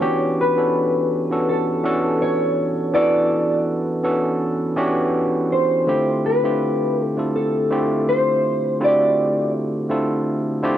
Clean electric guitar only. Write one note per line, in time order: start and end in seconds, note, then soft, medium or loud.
0.00 0.35 C#5 loud
0.41 1.53 B4 medium
1.49 2.24 A4 medium
2.22 2.94 C#5 medium
2.94 3.63 D5 loud
5.52 6.26 C5 medium
6.26 7.03 B4 medium
7.03 7.36 A4 medium
7.36 8.10 A4 medium
8.09 8.77 C5 loud
8.84 9.51 D5 loud